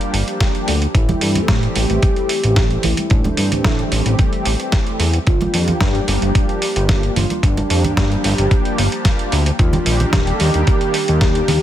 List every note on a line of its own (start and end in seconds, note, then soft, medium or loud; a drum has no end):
0.00 0.14 F3 medium
0.00 0.14 G3 medium
0.00 0.14 A#3 medium
0.00 0.14 D4 medium
0.00 0.14 G4 loud
0.00 closed hi-hat soft
0.13 0.23 G1 medium
0.13 open hi-hat loud
0.28 0.51 F3 loud
0.28 0.51 G3 medium
0.28 0.51 A#3 medium
0.28 0.52 D4 medium
0.28 0.52 G4 loud
0.28 closed hi-hat medium
0.40 kick loud
0.40 snare loud
0.40 closed hi-hat medium
0.55 0.68 F3 medium
0.55 0.68 G3 medium
0.55 0.68 A#3 medium
0.55 0.69 D4 medium
0.55 0.69 G4 medium
0.55 closed hi-hat soft
0.68 0.87 D2 medium
0.68 open hi-hat medium
0.82 closed hi-hat medium
0.94 1.14 A1 loud
0.94 1.32 E3 medium
0.94 1.32 G3 medium
0.94 1.33 A3 medium
0.94 1.33 C4 medium
0.94 1.44 E4 loud
0.94 1.33 G4 medium
0.94 kick loud
0.94 closed hi-hat soft
1.09 closed hi-hat soft
1.09 high conga medium
1.09 low conga medium
1.21 1.41 G2 medium
1.21 open hi-hat loud
1.35 1.73 E3 medium
1.35 1.73 G3 medium
1.35 1.73 A3 medium
1.35 1.73 C4 medium
1.35 1.73 G4 medium
1.35 closed hi-hat soft
1.35 low conga medium
1.42 1.51 A4 medium
1.48 1.68 A2 medium
1.48 2.02 G4 loud
1.48 kick loud
1.48 snare loud
1.48 closed hi-hat soft
1.63 closed hi-hat soft
1.76 1.86 A1 loud
1.76 2.13 E3 medium
1.76 2.14 G3 medium
1.76 2.14 A3 medium
1.76 2.14 C4 medium
1.76 2.14 G4 medium
1.76 open hi-hat medium
1.76 high conga medium
1.90 1.99 A1 medium
1.90 closed hi-hat soft
2.02 2.86 G4 loud
2.02 kick loud
2.02 closed hi-hat soft
2.16 2.30 E3 loud
2.16 2.30 G3 medium
2.16 2.30 A3 medium
2.16 2.30 C4 medium
2.16 2.31 G4 loud
2.16 closed hi-hat soft
2.29 open hi-hat loud
2.43 2.78 A1 medium
2.43 2.67 E3 medium
2.43 2.67 G3 medium
2.43 2.68 A3 medium
2.43 2.68 C4 medium
2.43 2.68 G4 loud
2.43 closed hi-hat soft
2.56 kick loud
2.56 snare loud
2.56 closed hi-hat soft
2.71 2.84 E3 medium
2.71 2.84 G3 medium
2.71 2.85 A3 medium
2.71 2.85 C4 medium
2.71 2.85 G4 medium
2.71 closed hi-hat soft
2.83 2.94 A1 medium
2.83 3.12 E4 loud
2.83 open hi-hat medium
2.83 low conga medium
2.97 closed hi-hat medium
2.97 high conga medium
3.10 3.30 A1 loud
3.10 3.48 E3 medium
3.10 3.49 G3 medium
3.10 3.49 A3 medium
3.10 3.49 C4 medium
3.10 4.19 D4 medium
3.10 3.49 G4 medium
3.10 kick loud
3.10 closed hi-hat soft
3.24 closed hi-hat soft
3.24 high conga medium
3.24 low conga medium
3.37 3.52 G2 medium
3.37 open hi-hat loud
3.52 3.62 A2 soft
3.52 3.89 E3 medium
3.52 3.89 G3 medium
3.52 3.89 A3 medium
3.52 3.89 C4 medium
3.52 3.89 G4 medium
3.52 closed hi-hat soft
3.52 low conga medium
3.64 3.84 A2 medium
3.64 kick loud
3.64 snare loud
3.64 closed hi-hat medium
3.79 closed hi-hat soft
3.92 4.02 A1 loud
3.92 4.30 E3 medium
3.92 4.30 G3 medium
3.92 4.30 A3 medium
3.92 4.30 C4 medium
3.92 4.30 G4 loud
3.92 open hi-hat medium
4.06 4.15 A1 medium
4.06 closed hi-hat soft
4.19 kick loud
4.19 closed hi-hat soft
4.33 4.46 E3 loud
4.33 4.47 G3 medium
4.33 4.47 A3 medium
4.33 4.47 C4 medium
4.33 4.47 G4 loud
4.33 closed hi-hat soft
4.45 4.56 A1 medium
4.45 open hi-hat loud
4.60 4.83 E3 medium
4.60 4.84 G3 medium
4.60 4.84 A3 medium
4.60 4.84 C4 medium
4.60 4.84 G4 loud
4.60 closed hi-hat soft
4.72 kick loud
4.72 snare loud
4.72 closed hi-hat soft
4.87 5.01 E3 medium
4.87 5.01 G3 medium
4.87 5.01 A3 medium
4.87 5.01 C4 medium
4.87 5.01 G4 medium
4.87 closed hi-hat soft
5.00 5.19 E2 medium
5.00 open hi-hat medium
5.14 closed hi-hat soft
5.27 5.46 G1 loud
5.27 5.65 F3 medium
5.27 5.65 G3 medium
5.27 5.65 A#3 medium
5.27 5.65 D4 medium
5.27 5.82 F4 loud
5.27 5.65 G4 medium
5.27 kick loud
5.27 closed hi-hat soft
5.41 closed hi-hat soft
5.41 high conga medium
5.41 low conga medium
5.54 5.73 F2 medium
5.54 open hi-hat loud
5.68 6.05 F3 medium
5.68 6.05 G3 medium
5.68 6.05 A#3 medium
5.68 6.05 D4 medium
5.68 6.06 G4 medium
5.68 closed hi-hat soft
5.68 low conga medium
5.81 6.00 G2 medium
5.81 6.34 G4 loud
5.81 kick loud
5.81 snare loud
5.81 closed hi-hat soft
5.95 closed hi-hat soft
6.08 6.18 G1 loud
6.08 6.46 F3 medium
6.08 6.46 G3 medium
6.08 6.46 A#3 medium
6.08 6.46 D4 medium
6.08 6.46 G4 loud
6.08 open hi-hat medium
6.08 high conga medium
6.22 6.31 G1 medium
6.22 closed hi-hat soft
6.35 7.12 G4 loud
6.35 kick loud
6.35 closed hi-hat soft
6.49 6.63 F3 loud
6.49 6.63 G3 medium
6.49 6.63 A#3 medium
6.49 6.63 D4 medium
6.49 6.63 G4 loud
6.49 closed hi-hat soft
6.62 open hi-hat loud
6.76 7.10 G1 medium
6.76 7.00 F3 medium
6.76 7.00 G3 medium
6.76 7.00 A#3 medium
6.76 7.00 D4 medium
6.76 7.00 G4 loud
6.76 closed hi-hat soft
6.89 kick loud
6.89 snare loud
6.89 closed hi-hat soft
7.03 7.17 F3 medium
7.03 7.17 G3 medium
7.03 7.17 A#3 medium
7.03 7.17 D4 medium
7.03 7.17 G4 medium
7.03 closed hi-hat soft
7.16 7.26 G1 medium
7.16 7.45 F4 medium
7.16 open hi-hat medium
7.16 low conga medium
7.30 closed hi-hat soft
7.30 high conga medium
7.43 7.62 G1 loud
7.43 7.81 F3 medium
7.43 7.81 G3 medium
7.43 7.81 A#3 medium
7.43 8.51 D4 medium
7.43 7.81 D4 medium
7.43 7.81 G4 medium
7.43 kick loud
7.43 closed hi-hat soft
7.57 closed hi-hat soft
7.57 high conga medium
7.70 7.84 F2 medium
7.70 open hi-hat loud
7.84 7.95 G2 soft
7.84 8.21 F3 medium
7.84 8.21 G3 medium
7.84 8.21 A#3 medium
7.84 8.21 D4 medium
7.84 8.22 G4 medium
7.84 closed hi-hat soft
7.84 low conga medium
7.97 8.16 G2 medium
7.97 kick medium
7.97 snare loud
7.97 closed hi-hat medium
8.12 closed hi-hat soft
8.24 8.34 G1 loud
8.24 8.62 F3 medium
8.24 8.62 G3 medium
8.24 8.62 A#3 medium
8.24 8.62 D4 medium
8.24 8.63 G4 loud
8.24 open hi-hat medium
8.38 8.48 G1 medium
8.38 closed hi-hat soft
8.51 kick loud
8.51 closed hi-hat medium
8.65 8.79 F3 medium
8.65 8.79 G3 medium
8.65 8.79 A#3 medium
8.65 8.79 D4 medium
8.65 8.79 G4 loud
8.65 closed hi-hat soft
8.78 8.88 G1 medium
8.78 open hi-hat loud
8.92 9.16 F3 loud
8.92 9.16 G3 medium
8.92 9.16 A#3 medium
8.92 9.16 D4 medium
8.92 9.16 G4 loud
8.92 closed hi-hat soft
9.05 kick loud
9.05 snare loud
9.05 closed hi-hat medium
9.19 9.33 F3 medium
9.19 9.33 G3 medium
9.19 9.33 A#3 medium
9.19 9.33 D4 medium
9.19 9.33 G4 medium
9.19 closed hi-hat soft
9.32 9.51 D2 medium
9.32 open hi-hat medium
9.46 closed hi-hat soft
9.59 9.78 D#2 loud
9.59 9.97 D#3 medium
9.59 9.97 G3 medium
9.59 9.97 A#3 medium
9.59 9.97 D4 medium
9.59 10.14 F4 loud
9.59 9.97 G4 medium
9.59 kick loud
9.59 closed hi-hat medium
9.73 closed hi-hat soft
9.73 high conga medium
9.73 low conga medium
9.86 10.05 A#1 medium
9.86 open hi-hat loud
10.00 10.37 D#3 medium
10.00 10.38 G3 medium
10.00 10.38 A#3 medium
10.00 10.38 D4 medium
10.00 10.38 G4 medium
10.00 closed hi-hat medium
10.00 low conga medium
10.12 10.32 D#1 medium
10.12 10.33 G4 loud
10.12 kick medium
10.12 snare loud
10.12 closed hi-hat medium
10.27 closed hi-hat soft
10.33 10.42 A4 medium
10.40 10.50 D#2 loud
10.40 10.78 D#3 medium
10.40 10.78 G3 medium
10.40 10.78 A#3 medium
10.40 10.79 D4 medium
10.40 11.62 G4 loud
10.40 10.79 G4 loud
10.40 open hi-hat medium
10.40 high conga medium
10.54 10.64 D#2 medium
10.54 closed hi-hat medium
10.67 kick loud
10.67 closed hi-hat medium
10.81 10.95 D#3 medium
10.81 10.95 G3 medium
10.81 10.95 A#3 medium
10.81 10.95 D4 medium
10.81 10.96 G4 loud
10.81 closed hi-hat soft
10.94 open hi-hat loud
11.08 11.42 D#2 medium
11.08 11.32 D#3 loud
11.08 11.32 G3 medium
11.08 11.33 A#3 medium
11.08 11.33 D4 medium
11.08 11.33 G4 loud
11.08 closed hi-hat medium
11.21 kick loud
11.21 snare loud
11.21 closed hi-hat medium
11.35 11.49 D#3 medium
11.35 11.49 G3 medium
11.35 11.49 A#3 medium
11.35 11.50 D4 medium
11.35 11.50 G4 medium
11.35 closed hi-hat soft
11.48 11.58 D#2 medium
11.48 open hi-hat medium
11.48 low conga medium